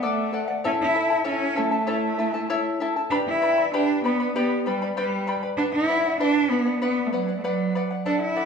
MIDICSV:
0, 0, Header, 1, 3, 480
1, 0, Start_track
1, 0, Key_signature, 2, "minor"
1, 0, Tempo, 618557
1, 492, Time_signature, 4, 2, 24, 8
1, 6559, End_track
2, 0, Start_track
2, 0, Title_t, "Charango"
2, 0, Program_c, 0, 24
2, 20, Note_on_c, 0, 69, 83
2, 22, Note_on_c, 0, 74, 87
2, 26, Note_on_c, 0, 78, 87
2, 245, Note_off_c, 0, 69, 0
2, 251, Note_off_c, 0, 74, 0
2, 254, Note_off_c, 0, 78, 0
2, 254, Note_on_c, 0, 69, 65
2, 260, Note_on_c, 0, 74, 66
2, 263, Note_on_c, 0, 78, 72
2, 362, Note_off_c, 0, 78, 0
2, 371, Note_on_c, 0, 78, 64
2, 373, Note_off_c, 0, 69, 0
2, 376, Note_off_c, 0, 74, 0
2, 388, Note_on_c, 0, 74, 48
2, 491, Note_off_c, 0, 78, 0
2, 499, Note_on_c, 0, 73, 77
2, 500, Note_off_c, 0, 74, 0
2, 500, Note_on_c, 0, 76, 86
2, 504, Note_on_c, 0, 64, 80
2, 504, Note_on_c, 0, 69, 86
2, 504, Note_on_c, 0, 81, 98
2, 726, Note_off_c, 0, 76, 0
2, 727, Note_off_c, 0, 64, 0
2, 733, Note_off_c, 0, 69, 0
2, 735, Note_off_c, 0, 73, 0
2, 735, Note_off_c, 0, 81, 0
2, 736, Note_on_c, 0, 76, 67
2, 737, Note_on_c, 0, 64, 67
2, 742, Note_on_c, 0, 69, 63
2, 744, Note_on_c, 0, 81, 68
2, 843, Note_off_c, 0, 81, 0
2, 851, Note_off_c, 0, 69, 0
2, 852, Note_on_c, 0, 81, 57
2, 854, Note_off_c, 0, 64, 0
2, 854, Note_off_c, 0, 76, 0
2, 860, Note_on_c, 0, 69, 51
2, 866, Note_on_c, 0, 64, 53
2, 960, Note_off_c, 0, 64, 0
2, 961, Note_off_c, 0, 69, 0
2, 963, Note_off_c, 0, 81, 0
2, 966, Note_on_c, 0, 73, 84
2, 968, Note_on_c, 0, 76, 84
2, 970, Note_on_c, 0, 64, 81
2, 970, Note_on_c, 0, 69, 87
2, 973, Note_on_c, 0, 81, 84
2, 1200, Note_off_c, 0, 76, 0
2, 1207, Note_off_c, 0, 64, 0
2, 1208, Note_off_c, 0, 69, 0
2, 1209, Note_off_c, 0, 73, 0
2, 1209, Note_on_c, 0, 76, 63
2, 1211, Note_off_c, 0, 81, 0
2, 1217, Note_on_c, 0, 64, 63
2, 1217, Note_on_c, 0, 69, 66
2, 1220, Note_on_c, 0, 81, 69
2, 1318, Note_off_c, 0, 81, 0
2, 1323, Note_off_c, 0, 69, 0
2, 1327, Note_on_c, 0, 81, 57
2, 1331, Note_off_c, 0, 64, 0
2, 1331, Note_off_c, 0, 76, 0
2, 1332, Note_on_c, 0, 69, 47
2, 1341, Note_on_c, 0, 64, 41
2, 1445, Note_off_c, 0, 64, 0
2, 1448, Note_off_c, 0, 69, 0
2, 1449, Note_on_c, 0, 73, 72
2, 1450, Note_off_c, 0, 81, 0
2, 1454, Note_on_c, 0, 76, 77
2, 1455, Note_on_c, 0, 64, 74
2, 1458, Note_on_c, 0, 69, 88
2, 1458, Note_on_c, 0, 81, 80
2, 1686, Note_off_c, 0, 76, 0
2, 1688, Note_off_c, 0, 64, 0
2, 1691, Note_off_c, 0, 73, 0
2, 1692, Note_off_c, 0, 69, 0
2, 1695, Note_off_c, 0, 81, 0
2, 1696, Note_on_c, 0, 76, 61
2, 1698, Note_on_c, 0, 64, 61
2, 1702, Note_on_c, 0, 69, 60
2, 1704, Note_on_c, 0, 81, 66
2, 1806, Note_off_c, 0, 81, 0
2, 1813, Note_off_c, 0, 69, 0
2, 1814, Note_off_c, 0, 76, 0
2, 1815, Note_off_c, 0, 64, 0
2, 1815, Note_on_c, 0, 81, 66
2, 1822, Note_on_c, 0, 69, 63
2, 1824, Note_on_c, 0, 64, 52
2, 1930, Note_off_c, 0, 64, 0
2, 1932, Note_off_c, 0, 69, 0
2, 1932, Note_off_c, 0, 81, 0
2, 1937, Note_on_c, 0, 73, 81
2, 1939, Note_on_c, 0, 64, 88
2, 1940, Note_on_c, 0, 76, 91
2, 1941, Note_on_c, 0, 81, 96
2, 1942, Note_on_c, 0, 69, 97
2, 2165, Note_off_c, 0, 76, 0
2, 2174, Note_off_c, 0, 64, 0
2, 2175, Note_off_c, 0, 69, 0
2, 2175, Note_off_c, 0, 73, 0
2, 2175, Note_on_c, 0, 76, 67
2, 2177, Note_off_c, 0, 81, 0
2, 2183, Note_on_c, 0, 64, 77
2, 2184, Note_on_c, 0, 69, 74
2, 2185, Note_on_c, 0, 81, 79
2, 2289, Note_off_c, 0, 81, 0
2, 2294, Note_off_c, 0, 76, 0
2, 2295, Note_off_c, 0, 69, 0
2, 2298, Note_off_c, 0, 64, 0
2, 2298, Note_on_c, 0, 81, 56
2, 2304, Note_on_c, 0, 69, 52
2, 2311, Note_on_c, 0, 64, 43
2, 2412, Note_off_c, 0, 64, 0
2, 2412, Note_on_c, 0, 67, 82
2, 2413, Note_off_c, 0, 69, 0
2, 2414, Note_on_c, 0, 79, 74
2, 2415, Note_off_c, 0, 81, 0
2, 2415, Note_on_c, 0, 71, 84
2, 2416, Note_on_c, 0, 74, 82
2, 2420, Note_on_c, 0, 83, 87
2, 2643, Note_off_c, 0, 79, 0
2, 2645, Note_off_c, 0, 71, 0
2, 2648, Note_off_c, 0, 74, 0
2, 2652, Note_off_c, 0, 67, 0
2, 2653, Note_on_c, 0, 79, 63
2, 2654, Note_off_c, 0, 83, 0
2, 2654, Note_on_c, 0, 71, 59
2, 2657, Note_on_c, 0, 74, 68
2, 2664, Note_on_c, 0, 83, 73
2, 2768, Note_off_c, 0, 83, 0
2, 2773, Note_off_c, 0, 71, 0
2, 2773, Note_off_c, 0, 79, 0
2, 2775, Note_off_c, 0, 74, 0
2, 2778, Note_on_c, 0, 83, 58
2, 2783, Note_on_c, 0, 74, 57
2, 2789, Note_on_c, 0, 71, 49
2, 2892, Note_off_c, 0, 83, 0
2, 2893, Note_off_c, 0, 71, 0
2, 2894, Note_off_c, 0, 74, 0
2, 2898, Note_on_c, 0, 67, 75
2, 2900, Note_on_c, 0, 79, 81
2, 2902, Note_on_c, 0, 71, 81
2, 2902, Note_on_c, 0, 83, 88
2, 2903, Note_on_c, 0, 74, 83
2, 3124, Note_off_c, 0, 79, 0
2, 3131, Note_off_c, 0, 71, 0
2, 3133, Note_on_c, 0, 79, 55
2, 3135, Note_off_c, 0, 67, 0
2, 3136, Note_off_c, 0, 74, 0
2, 3137, Note_off_c, 0, 83, 0
2, 3140, Note_on_c, 0, 71, 57
2, 3145, Note_on_c, 0, 74, 62
2, 3148, Note_on_c, 0, 83, 71
2, 3249, Note_off_c, 0, 83, 0
2, 3253, Note_off_c, 0, 79, 0
2, 3254, Note_off_c, 0, 74, 0
2, 3256, Note_off_c, 0, 71, 0
2, 3258, Note_on_c, 0, 83, 53
2, 3264, Note_on_c, 0, 74, 52
2, 3267, Note_on_c, 0, 71, 45
2, 3373, Note_off_c, 0, 71, 0
2, 3374, Note_off_c, 0, 74, 0
2, 3375, Note_off_c, 0, 83, 0
2, 3380, Note_on_c, 0, 67, 81
2, 3381, Note_on_c, 0, 79, 85
2, 3383, Note_on_c, 0, 71, 77
2, 3383, Note_on_c, 0, 74, 90
2, 3389, Note_on_c, 0, 83, 83
2, 3606, Note_off_c, 0, 79, 0
2, 3611, Note_off_c, 0, 71, 0
2, 3613, Note_off_c, 0, 74, 0
2, 3615, Note_on_c, 0, 79, 54
2, 3617, Note_off_c, 0, 67, 0
2, 3617, Note_off_c, 0, 83, 0
2, 3620, Note_on_c, 0, 71, 64
2, 3623, Note_on_c, 0, 74, 62
2, 3626, Note_on_c, 0, 83, 67
2, 3731, Note_off_c, 0, 83, 0
2, 3734, Note_off_c, 0, 79, 0
2, 3737, Note_off_c, 0, 71, 0
2, 3738, Note_off_c, 0, 74, 0
2, 3740, Note_on_c, 0, 83, 61
2, 3747, Note_on_c, 0, 74, 52
2, 3753, Note_on_c, 0, 71, 50
2, 3850, Note_off_c, 0, 74, 0
2, 3852, Note_off_c, 0, 71, 0
2, 3853, Note_off_c, 0, 83, 0
2, 3856, Note_on_c, 0, 67, 79
2, 3859, Note_on_c, 0, 79, 76
2, 3860, Note_on_c, 0, 74, 91
2, 3861, Note_on_c, 0, 71, 83
2, 3862, Note_on_c, 0, 83, 83
2, 4082, Note_off_c, 0, 79, 0
2, 4086, Note_off_c, 0, 71, 0
2, 4090, Note_off_c, 0, 74, 0
2, 4091, Note_on_c, 0, 79, 61
2, 4093, Note_off_c, 0, 83, 0
2, 4094, Note_off_c, 0, 67, 0
2, 4095, Note_on_c, 0, 71, 70
2, 4099, Note_on_c, 0, 74, 67
2, 4102, Note_on_c, 0, 83, 70
2, 4202, Note_off_c, 0, 83, 0
2, 4207, Note_off_c, 0, 74, 0
2, 4210, Note_off_c, 0, 71, 0
2, 4212, Note_off_c, 0, 79, 0
2, 4212, Note_on_c, 0, 83, 56
2, 4216, Note_on_c, 0, 74, 52
2, 4219, Note_on_c, 0, 71, 50
2, 4322, Note_off_c, 0, 71, 0
2, 4324, Note_off_c, 0, 74, 0
2, 4331, Note_on_c, 0, 71, 76
2, 4332, Note_off_c, 0, 83, 0
2, 4333, Note_on_c, 0, 74, 80
2, 4338, Note_on_c, 0, 78, 77
2, 4558, Note_off_c, 0, 71, 0
2, 4564, Note_off_c, 0, 74, 0
2, 4567, Note_on_c, 0, 71, 66
2, 4571, Note_off_c, 0, 78, 0
2, 4573, Note_on_c, 0, 74, 60
2, 4580, Note_on_c, 0, 78, 78
2, 4688, Note_off_c, 0, 78, 0
2, 4690, Note_off_c, 0, 71, 0
2, 4693, Note_off_c, 0, 74, 0
2, 4697, Note_on_c, 0, 78, 61
2, 4706, Note_on_c, 0, 74, 47
2, 4807, Note_off_c, 0, 74, 0
2, 4809, Note_off_c, 0, 78, 0
2, 4812, Note_on_c, 0, 71, 80
2, 4816, Note_on_c, 0, 74, 82
2, 4818, Note_on_c, 0, 78, 89
2, 5038, Note_off_c, 0, 71, 0
2, 5044, Note_off_c, 0, 74, 0
2, 5047, Note_on_c, 0, 71, 55
2, 5049, Note_off_c, 0, 78, 0
2, 5053, Note_on_c, 0, 74, 63
2, 5059, Note_on_c, 0, 78, 65
2, 5156, Note_off_c, 0, 78, 0
2, 5165, Note_on_c, 0, 78, 60
2, 5170, Note_off_c, 0, 71, 0
2, 5171, Note_off_c, 0, 74, 0
2, 5180, Note_on_c, 0, 74, 48
2, 5283, Note_off_c, 0, 74, 0
2, 5289, Note_off_c, 0, 78, 0
2, 5290, Note_on_c, 0, 71, 73
2, 5292, Note_on_c, 0, 74, 85
2, 5298, Note_on_c, 0, 78, 97
2, 5521, Note_off_c, 0, 71, 0
2, 5526, Note_off_c, 0, 74, 0
2, 5530, Note_on_c, 0, 71, 65
2, 5532, Note_off_c, 0, 78, 0
2, 5535, Note_on_c, 0, 74, 63
2, 5541, Note_on_c, 0, 78, 75
2, 5643, Note_off_c, 0, 78, 0
2, 5652, Note_off_c, 0, 71, 0
2, 5652, Note_off_c, 0, 74, 0
2, 5653, Note_on_c, 0, 78, 58
2, 5662, Note_on_c, 0, 74, 47
2, 5768, Note_off_c, 0, 74, 0
2, 5770, Note_off_c, 0, 78, 0
2, 5775, Note_on_c, 0, 71, 75
2, 5778, Note_on_c, 0, 74, 84
2, 5779, Note_on_c, 0, 78, 82
2, 6006, Note_off_c, 0, 71, 0
2, 6009, Note_off_c, 0, 74, 0
2, 6016, Note_off_c, 0, 78, 0
2, 6016, Note_on_c, 0, 71, 62
2, 6018, Note_on_c, 0, 74, 71
2, 6025, Note_on_c, 0, 78, 71
2, 6126, Note_off_c, 0, 78, 0
2, 6134, Note_off_c, 0, 71, 0
2, 6135, Note_on_c, 0, 78, 58
2, 6136, Note_off_c, 0, 74, 0
2, 6146, Note_on_c, 0, 74, 49
2, 6245, Note_off_c, 0, 74, 0
2, 6247, Note_off_c, 0, 78, 0
2, 6252, Note_on_c, 0, 69, 78
2, 6255, Note_on_c, 0, 74, 88
2, 6256, Note_on_c, 0, 78, 86
2, 6477, Note_off_c, 0, 69, 0
2, 6483, Note_off_c, 0, 74, 0
2, 6485, Note_off_c, 0, 78, 0
2, 6486, Note_on_c, 0, 69, 59
2, 6492, Note_on_c, 0, 74, 60
2, 6494, Note_on_c, 0, 78, 72
2, 6559, Note_off_c, 0, 69, 0
2, 6559, Note_off_c, 0, 74, 0
2, 6559, Note_off_c, 0, 78, 0
2, 6559, End_track
3, 0, Start_track
3, 0, Title_t, "Cello"
3, 0, Program_c, 1, 42
3, 29, Note_on_c, 1, 57, 91
3, 381, Note_off_c, 1, 57, 0
3, 512, Note_on_c, 1, 61, 97
3, 562, Note_off_c, 1, 61, 0
3, 627, Note_on_c, 1, 64, 98
3, 955, Note_off_c, 1, 64, 0
3, 990, Note_on_c, 1, 61, 105
3, 1229, Note_on_c, 1, 57, 98
3, 1241, Note_off_c, 1, 61, 0
3, 2181, Note_off_c, 1, 57, 0
3, 2408, Note_on_c, 1, 62, 97
3, 2463, Note_off_c, 1, 62, 0
3, 2532, Note_on_c, 1, 64, 110
3, 2867, Note_off_c, 1, 64, 0
3, 2902, Note_on_c, 1, 62, 103
3, 3121, Note_off_c, 1, 62, 0
3, 3134, Note_on_c, 1, 59, 96
3, 3357, Note_off_c, 1, 59, 0
3, 3375, Note_on_c, 1, 59, 98
3, 3597, Note_off_c, 1, 59, 0
3, 3614, Note_on_c, 1, 55, 85
3, 3837, Note_off_c, 1, 55, 0
3, 3841, Note_on_c, 1, 55, 98
3, 4182, Note_off_c, 1, 55, 0
3, 4325, Note_on_c, 1, 62, 102
3, 4381, Note_off_c, 1, 62, 0
3, 4442, Note_on_c, 1, 64, 108
3, 4782, Note_off_c, 1, 64, 0
3, 4809, Note_on_c, 1, 62, 111
3, 5042, Note_on_c, 1, 59, 100
3, 5054, Note_off_c, 1, 62, 0
3, 5267, Note_off_c, 1, 59, 0
3, 5272, Note_on_c, 1, 59, 101
3, 5480, Note_on_c, 1, 57, 62
3, 5492, Note_off_c, 1, 59, 0
3, 5514, Note_on_c, 1, 54, 83
3, 5526, Note_off_c, 1, 57, 0
3, 5709, Note_off_c, 1, 54, 0
3, 5721, Note_on_c, 1, 57, 60
3, 5764, Note_on_c, 1, 54, 84
3, 5775, Note_off_c, 1, 57, 0
3, 6128, Note_off_c, 1, 54, 0
3, 6252, Note_on_c, 1, 62, 96
3, 6364, Note_off_c, 1, 62, 0
3, 6372, Note_on_c, 1, 64, 108
3, 6559, Note_off_c, 1, 64, 0
3, 6559, End_track
0, 0, End_of_file